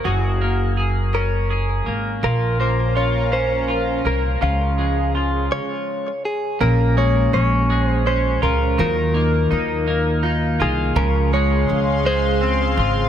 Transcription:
Already playing: clean electric guitar A#3 D#4
0.04 upright bass F#1, clean electric guitar F#3 F#4 G#4
0.41 clean electric guitar A#3
0.77 clean electric guitar G#4
1.14 clean electric guitar C#4 A#4
1.50 clean electric guitar G#4
1.86 upright bass G#1, clean electric guitar A#3
2.23 upright bass A#1, clean electric guitar A#2 F4 A#4, steel-string acoustic guitar F3, analog synth pad C#4 A#4 F5 A#5
2.60 steel-string acoustic guitar F3, clean electric guitar A#3 C5
2.95 steel-string acoustic guitar C#4, clean electric guitar F4 C#5
3.32 steel-string acoustic guitar A#3, clean electric guitar C#4 C5
3.68 steel-string acoustic guitar F3, clean electric guitar F4
4.05 upright bass C2, clean electric guitar A#3 A#4, steel-string acoustic guitar A#3
4.41 upright bass C#2, clean electric guitar C#3 F4 F5, steel-string acoustic guitar F3, analog synth pad G#4
4.78 steel-string acoustic guitar F3, clean electric guitar G#3
5.15 steel-string acoustic guitar C#4, clean electric guitar F4
5.52 clean electric guitar C#5
6.25 clean electric guitar G#4
6.60 upright bass A#1, clean electric guitar A#2 A#4, steel-string acoustic guitar F3 C#4
6.97 clean electric guitar G#3 C#5, steel-string acoustic guitar G#3
7.33 upright bass A#1, steel-string acoustic guitar F3, clean electric guitar C#4 C#5
7.69 steel-string acoustic guitar G#3, clean electric guitar G#3
7.86 clean electric guitar C5
8.06 steel-string acoustic guitar C#4, clean electric guitar C#4 C5
8.42 upright bass C#2, steel-string acoustic guitar G#3, clean electric guitar F4 A#4
8.78 upright bass D#2, clean electric guitar D#3 A#4, steel-string acoustic guitar F#3 F4
9.14 clean electric guitar A#3, steel-string acoustic guitar D#4
9.51 upright bass D#2, steel-string acoustic guitar A#3, clean electric guitar D#4
9.87 clean electric guitar A#3, steel-string acoustic guitar D#4
10.23 clean electric guitar D#4, steel-string acoustic guitar F4
10.60 upright bass C2, steel-string acoustic guitar D#4, clean electric guitar F4 G#4
10.96 upright bass C#2, clean electric guitar C#3 A#4, steel-string acoustic guitar F3, analog synth pad G#4 F5 C6
11.32 steel-string acoustic guitar G#3, clean electric guitar G#3 C#5
11.69 upright bass C#2, steel-string acoustic guitar F3
12.05 steel-string acoustic guitar G#3, clean electric guitar G#3 C5
12.41 clean electric guitar C4, steel-string acoustic guitar C4
12.77 upright bass G#1, steel-string acoustic guitar G#3, clean electric guitar F4

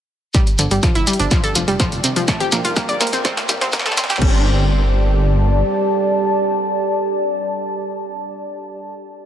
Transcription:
0.34 synth pluck G3, ambient pad G4, kick, snare, closed hi-hat, riser, shekere
0.47 ambient pad D5, closed hi-hat, shekere
0.59 detuned saw bass G1, synth pluck D3, closed hi-hat, low conga, shekere
0.71 detuned saw bass G1, synth pluck G3, closed hi-hat, shekere
0.83 synth pluck F3, kick, snare, closed hi-hat, shekere
0.95 detuned saw bass F1, synth pluck E4, closed hi-hat, shekere
1.07 synth pluck G3, closed hi-hat, shekere
1.13 closed hi-hat
1.20 detuned saw bass G1, synth pluck D4, closed hi-hat, low conga, shekere
1.31 synth pluck F3, ambient pad F4, kick, snare, closed hi-hat, shekere
1.44 synth pluck A4, closed hi-hat, shekere
1.55 detuned saw bass F1, synth pluck F3, closed hi-hat, shekere
1.68 detuned saw bass F1, synth pluck G3, closed hi-hat, shekere
1.80 synth pluck F3, kick, snare, closed hi-hat, low conga, shekere
1.92 detuned saw bass F1, closed hi-hat, shekere
2.04 synth pluck C3, closed hi-hat, shekere
2.16 detuned saw bass F1, synth pluck F3, closed hi-hat, shekere
2.28 synth pluck A3, ambient pad A#4, kick, snare, closed hi-hat, shekere
2.40 synth pluck G4, closed hi-hat, low conga, shekere
2.52 detuned saw bass A#1, synth pluck A#3, snare, closed hi-hat, shekere
2.64 detuned saw bass F1, synth pluck F4, closed hi-hat, shekere
2.76 synth pluck A#3, kick, snare, closed hi-hat, shekere
2.88 detuned saw bass A#1, synth pluck D5, closed hi-hat, shekere
3.00 synth pluck A#3, snare, closed hi-hat, low conga, shekere
3.07 closed hi-hat
3.13 detuned saw bass A#1, synth pluck C4, closed hi-hat, shekere
3.25 synth pluck C4, kick, snare, closed hi-hat, shekere
3.37 snare, closed hi-hat, shekere
3.49 detuned saw bass C2, synth pluck G3, snare, closed hi-hat, shekere
3.61 detuned saw bass C2, synth pluck C4, snare, closed hi-hat, low conga, shekere
3.72 synth pluck A#3, kick, snare, closed hi-hat, shekere
3.79 snare
3.86 detuned saw bass E2, synth pluck A4, snare, closed hi-hat, shekere
3.92 snare
3.97 synth pluck C4, snare, closed hi-hat, shekere
4.04 snare
4.10 detuned saw bass E2, synth pluck G4, snare, closed hi-hat, shekere
4.16 snare
4.21 detuned saw bass G1, synth pluck G3, ambient pad G4, kick, crash
4.29 ambient pad D5
4.36 ambient pad A5

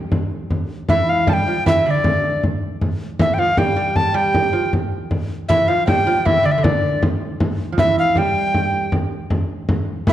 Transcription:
0.12 frame drum
0.31 frame drum
0.50 frame drum
0.89 lute E3, recorder E5, frame drum
1.08 recorder F5, frame drum
1.27 lute G3, recorder A5, frame drum
1.33 recorder G5
1.47 lute F3, frame drum
1.66 lute E3, recorder E5, frame drum
1.86 lute D3, recorder E5
1.91 recorder D5
2.04 frame drum
2.24 frame drum
2.43 frame drum
2.62 frame drum
2.81 frame drum
3.19 lute E3, recorder E5, frame drum
3.34 recorder G5
3.38 lute F3, recorder F5, frame drum
3.57 lute G3, recorder G5, frame drum
3.77 lute G3
3.96 recorder A5, frame drum
4.14 lute G3, recorder G5
4.34 frame drum
4.53 lute F3
4.73 frame drum
4.92 frame drum
5.11 frame drum
5.49 lute E3, recorder E5, frame drum
5.68 lute F3, recorder F5, frame drum
5.87 lute G3, recorder G5, frame drum
6.07 lute F3, frame drum
6.25 lute E3, recorder E5, frame drum
6.43 lute D3, recorder D5
6.52 recorder E5
6.58 lute D3, recorder E5
6.64 recorder D5, frame drum
6.83 frame drum
7.03 frame drum
7.22 frame drum
7.40 frame drum
7.72 lute F3
7.78 lute E3, recorder E5, frame drum
7.97 recorder F5, frame drum
8.15 lute G3, recorder G5, frame drum
8.35 frame drum
8.54 frame drum
8.92 frame drum
9.30 frame drum
9.50 frame drum
9.69 frame drum
10.07 viola da gamba E3, lute E3, recorder E5, frame drum

